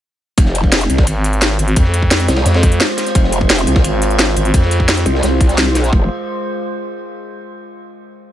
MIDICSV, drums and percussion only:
0, 0, Header, 1, 2, 480
1, 0, Start_track
1, 0, Key_signature, -4, "minor"
1, 0, Tempo, 346821
1, 522, Time_signature, 4, 2, 24, 8
1, 11518, End_track
2, 0, Start_track
2, 0, Title_t, "Drums"
2, 521, Note_on_c, 9, 36, 127
2, 521, Note_on_c, 9, 42, 101
2, 526, Note_on_c, 9, 51, 81
2, 635, Note_on_c, 9, 38, 46
2, 659, Note_off_c, 9, 36, 0
2, 659, Note_off_c, 9, 42, 0
2, 664, Note_off_c, 9, 51, 0
2, 761, Note_on_c, 9, 42, 73
2, 764, Note_on_c, 9, 51, 70
2, 773, Note_off_c, 9, 38, 0
2, 881, Note_on_c, 9, 36, 63
2, 900, Note_off_c, 9, 42, 0
2, 902, Note_off_c, 9, 51, 0
2, 1001, Note_on_c, 9, 38, 127
2, 1001, Note_on_c, 9, 42, 98
2, 1002, Note_off_c, 9, 38, 0
2, 1002, Note_on_c, 9, 38, 109
2, 1004, Note_on_c, 9, 51, 86
2, 1020, Note_off_c, 9, 36, 0
2, 1121, Note_off_c, 9, 42, 0
2, 1121, Note_on_c, 9, 42, 42
2, 1140, Note_off_c, 9, 38, 0
2, 1143, Note_off_c, 9, 51, 0
2, 1241, Note_off_c, 9, 42, 0
2, 1241, Note_on_c, 9, 42, 73
2, 1247, Note_on_c, 9, 51, 68
2, 1361, Note_on_c, 9, 36, 115
2, 1363, Note_on_c, 9, 38, 59
2, 1380, Note_off_c, 9, 42, 0
2, 1386, Note_off_c, 9, 51, 0
2, 1478, Note_on_c, 9, 51, 83
2, 1481, Note_on_c, 9, 42, 95
2, 1500, Note_off_c, 9, 36, 0
2, 1501, Note_off_c, 9, 38, 0
2, 1617, Note_off_c, 9, 51, 0
2, 1620, Note_off_c, 9, 42, 0
2, 1721, Note_on_c, 9, 42, 68
2, 1739, Note_on_c, 9, 51, 66
2, 1842, Note_off_c, 9, 42, 0
2, 1842, Note_on_c, 9, 42, 37
2, 1877, Note_off_c, 9, 51, 0
2, 1960, Note_on_c, 9, 38, 119
2, 1961, Note_off_c, 9, 38, 0
2, 1961, Note_off_c, 9, 42, 0
2, 1961, Note_on_c, 9, 38, 121
2, 1961, Note_on_c, 9, 42, 98
2, 1968, Note_on_c, 9, 51, 93
2, 2084, Note_off_c, 9, 38, 0
2, 2084, Note_on_c, 9, 38, 43
2, 2099, Note_off_c, 9, 42, 0
2, 2107, Note_off_c, 9, 51, 0
2, 2201, Note_on_c, 9, 42, 71
2, 2201, Note_on_c, 9, 51, 68
2, 2223, Note_off_c, 9, 38, 0
2, 2321, Note_off_c, 9, 42, 0
2, 2321, Note_on_c, 9, 42, 38
2, 2339, Note_off_c, 9, 51, 0
2, 2441, Note_off_c, 9, 42, 0
2, 2441, Note_on_c, 9, 42, 102
2, 2442, Note_on_c, 9, 36, 127
2, 2443, Note_on_c, 9, 51, 88
2, 2552, Note_on_c, 9, 38, 37
2, 2579, Note_off_c, 9, 42, 0
2, 2580, Note_off_c, 9, 36, 0
2, 2581, Note_off_c, 9, 51, 0
2, 2681, Note_on_c, 9, 42, 73
2, 2682, Note_on_c, 9, 51, 66
2, 2690, Note_off_c, 9, 38, 0
2, 2802, Note_on_c, 9, 36, 64
2, 2819, Note_off_c, 9, 42, 0
2, 2821, Note_off_c, 9, 51, 0
2, 2917, Note_on_c, 9, 38, 118
2, 2921, Note_off_c, 9, 38, 0
2, 2921, Note_on_c, 9, 38, 121
2, 2921, Note_on_c, 9, 42, 99
2, 2931, Note_on_c, 9, 51, 87
2, 2940, Note_off_c, 9, 36, 0
2, 3036, Note_off_c, 9, 38, 0
2, 3036, Note_on_c, 9, 38, 47
2, 3041, Note_off_c, 9, 42, 0
2, 3041, Note_on_c, 9, 42, 42
2, 3069, Note_off_c, 9, 51, 0
2, 3160, Note_off_c, 9, 38, 0
2, 3160, Note_on_c, 9, 38, 113
2, 3161, Note_off_c, 9, 42, 0
2, 3161, Note_on_c, 9, 42, 70
2, 3162, Note_on_c, 9, 51, 80
2, 3271, Note_off_c, 9, 51, 0
2, 3271, Note_on_c, 9, 51, 86
2, 3282, Note_off_c, 9, 38, 0
2, 3282, Note_on_c, 9, 38, 105
2, 3300, Note_off_c, 9, 42, 0
2, 3401, Note_off_c, 9, 38, 0
2, 3401, Note_on_c, 9, 38, 111
2, 3401, Note_on_c, 9, 42, 101
2, 3405, Note_off_c, 9, 51, 0
2, 3405, Note_on_c, 9, 51, 76
2, 3518, Note_off_c, 9, 51, 0
2, 3518, Note_on_c, 9, 51, 81
2, 3529, Note_off_c, 9, 38, 0
2, 3529, Note_on_c, 9, 38, 112
2, 3539, Note_off_c, 9, 42, 0
2, 3641, Note_on_c, 9, 36, 116
2, 3641, Note_on_c, 9, 42, 67
2, 3644, Note_off_c, 9, 51, 0
2, 3644, Note_on_c, 9, 51, 67
2, 3667, Note_off_c, 9, 38, 0
2, 3762, Note_off_c, 9, 42, 0
2, 3762, Note_on_c, 9, 42, 38
2, 3780, Note_off_c, 9, 36, 0
2, 3782, Note_off_c, 9, 51, 0
2, 3879, Note_on_c, 9, 51, 100
2, 3882, Note_off_c, 9, 42, 0
2, 3882, Note_on_c, 9, 38, 127
2, 3882, Note_on_c, 9, 42, 98
2, 3884, Note_off_c, 9, 38, 0
2, 3884, Note_on_c, 9, 38, 127
2, 4007, Note_off_c, 9, 51, 0
2, 4007, Note_on_c, 9, 51, 43
2, 4020, Note_off_c, 9, 42, 0
2, 4022, Note_off_c, 9, 38, 0
2, 4121, Note_on_c, 9, 38, 35
2, 4121, Note_on_c, 9, 42, 66
2, 4129, Note_off_c, 9, 51, 0
2, 4129, Note_on_c, 9, 51, 64
2, 4237, Note_off_c, 9, 38, 0
2, 4237, Note_on_c, 9, 38, 50
2, 4241, Note_off_c, 9, 42, 0
2, 4241, Note_on_c, 9, 42, 41
2, 4267, Note_off_c, 9, 51, 0
2, 4361, Note_off_c, 9, 42, 0
2, 4361, Note_on_c, 9, 36, 127
2, 4361, Note_on_c, 9, 42, 95
2, 4364, Note_on_c, 9, 51, 97
2, 4376, Note_off_c, 9, 38, 0
2, 4486, Note_on_c, 9, 38, 43
2, 4500, Note_off_c, 9, 36, 0
2, 4500, Note_off_c, 9, 42, 0
2, 4502, Note_off_c, 9, 51, 0
2, 4601, Note_on_c, 9, 42, 74
2, 4602, Note_on_c, 9, 51, 73
2, 4624, Note_off_c, 9, 38, 0
2, 4721, Note_on_c, 9, 36, 71
2, 4740, Note_off_c, 9, 42, 0
2, 4741, Note_off_c, 9, 51, 0
2, 4841, Note_on_c, 9, 38, 127
2, 4841, Note_on_c, 9, 42, 97
2, 4841, Note_on_c, 9, 51, 85
2, 4845, Note_off_c, 9, 38, 0
2, 4845, Note_on_c, 9, 38, 124
2, 4860, Note_off_c, 9, 36, 0
2, 4961, Note_off_c, 9, 42, 0
2, 4961, Note_on_c, 9, 42, 40
2, 4979, Note_off_c, 9, 51, 0
2, 4983, Note_off_c, 9, 38, 0
2, 5081, Note_off_c, 9, 42, 0
2, 5081, Note_on_c, 9, 42, 70
2, 5090, Note_on_c, 9, 51, 66
2, 5199, Note_on_c, 9, 38, 60
2, 5201, Note_on_c, 9, 36, 117
2, 5220, Note_off_c, 9, 42, 0
2, 5228, Note_off_c, 9, 51, 0
2, 5318, Note_on_c, 9, 51, 89
2, 5321, Note_on_c, 9, 42, 97
2, 5337, Note_off_c, 9, 38, 0
2, 5340, Note_off_c, 9, 36, 0
2, 5456, Note_off_c, 9, 51, 0
2, 5460, Note_off_c, 9, 42, 0
2, 5561, Note_on_c, 9, 42, 69
2, 5578, Note_on_c, 9, 51, 66
2, 5682, Note_off_c, 9, 42, 0
2, 5682, Note_on_c, 9, 42, 37
2, 5716, Note_off_c, 9, 51, 0
2, 5792, Note_on_c, 9, 38, 127
2, 5801, Note_on_c, 9, 51, 96
2, 5802, Note_off_c, 9, 38, 0
2, 5802, Note_off_c, 9, 42, 0
2, 5802, Note_on_c, 9, 38, 127
2, 5802, Note_on_c, 9, 42, 95
2, 5912, Note_off_c, 9, 38, 0
2, 5912, Note_on_c, 9, 38, 41
2, 5939, Note_off_c, 9, 51, 0
2, 5940, Note_off_c, 9, 42, 0
2, 6041, Note_on_c, 9, 42, 64
2, 6041, Note_on_c, 9, 51, 72
2, 6051, Note_off_c, 9, 38, 0
2, 6162, Note_off_c, 9, 42, 0
2, 6162, Note_on_c, 9, 42, 40
2, 6179, Note_off_c, 9, 51, 0
2, 6281, Note_on_c, 9, 36, 127
2, 6282, Note_off_c, 9, 42, 0
2, 6282, Note_on_c, 9, 42, 96
2, 6288, Note_on_c, 9, 51, 92
2, 6401, Note_on_c, 9, 38, 41
2, 6420, Note_off_c, 9, 36, 0
2, 6420, Note_off_c, 9, 42, 0
2, 6426, Note_off_c, 9, 51, 0
2, 6522, Note_on_c, 9, 42, 69
2, 6535, Note_on_c, 9, 51, 79
2, 6539, Note_off_c, 9, 38, 0
2, 6641, Note_on_c, 9, 36, 67
2, 6660, Note_off_c, 9, 42, 0
2, 6673, Note_off_c, 9, 51, 0
2, 6760, Note_on_c, 9, 51, 85
2, 6761, Note_on_c, 9, 38, 120
2, 6762, Note_off_c, 9, 38, 0
2, 6762, Note_on_c, 9, 38, 127
2, 6762, Note_on_c, 9, 42, 95
2, 6780, Note_off_c, 9, 36, 0
2, 6882, Note_off_c, 9, 42, 0
2, 6882, Note_on_c, 9, 42, 40
2, 6883, Note_off_c, 9, 38, 0
2, 6883, Note_on_c, 9, 38, 46
2, 6898, Note_off_c, 9, 51, 0
2, 6998, Note_on_c, 9, 51, 71
2, 7001, Note_off_c, 9, 42, 0
2, 7001, Note_on_c, 9, 42, 66
2, 7021, Note_off_c, 9, 38, 0
2, 7130, Note_on_c, 9, 38, 57
2, 7136, Note_off_c, 9, 51, 0
2, 7140, Note_off_c, 9, 42, 0
2, 7230, Note_on_c, 9, 51, 83
2, 7242, Note_on_c, 9, 42, 92
2, 7251, Note_off_c, 9, 38, 0
2, 7251, Note_on_c, 9, 38, 115
2, 7368, Note_off_c, 9, 51, 0
2, 7380, Note_off_c, 9, 42, 0
2, 7390, Note_off_c, 9, 38, 0
2, 7478, Note_on_c, 9, 51, 59
2, 7481, Note_on_c, 9, 36, 111
2, 7482, Note_on_c, 9, 42, 65
2, 7601, Note_on_c, 9, 38, 50
2, 7602, Note_off_c, 9, 42, 0
2, 7602, Note_on_c, 9, 42, 36
2, 7617, Note_off_c, 9, 51, 0
2, 7620, Note_off_c, 9, 36, 0
2, 7719, Note_on_c, 9, 51, 80
2, 7721, Note_off_c, 9, 38, 0
2, 7721, Note_off_c, 9, 42, 0
2, 7721, Note_on_c, 9, 38, 124
2, 7721, Note_on_c, 9, 42, 90
2, 7857, Note_off_c, 9, 51, 0
2, 7860, Note_off_c, 9, 38, 0
2, 7860, Note_off_c, 9, 42, 0
2, 7960, Note_on_c, 9, 51, 65
2, 7962, Note_on_c, 9, 38, 37
2, 7962, Note_on_c, 9, 42, 64
2, 8082, Note_off_c, 9, 42, 0
2, 8082, Note_on_c, 9, 42, 39
2, 8083, Note_off_c, 9, 38, 0
2, 8083, Note_on_c, 9, 38, 48
2, 8098, Note_off_c, 9, 51, 0
2, 8202, Note_on_c, 9, 36, 118
2, 8220, Note_off_c, 9, 42, 0
2, 8221, Note_off_c, 9, 38, 0
2, 8340, Note_off_c, 9, 36, 0
2, 11518, End_track
0, 0, End_of_file